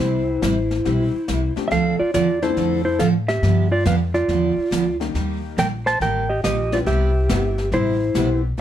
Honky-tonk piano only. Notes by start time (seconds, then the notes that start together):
Already playing: E3 G3 C4 E4 G4
0.85 E3 G3 C4 E4 G4
1.56 F3 A3 C4 D4 G4
2.42 F3 A3 C4 D4 A4
5.00 D#3 G3 A#3 D#4 G4
6.72 G3 B3 C4 E4 G4
7.29 G3 B3 C4 E4 G4
8.15 G3 B3 C4 E4 G4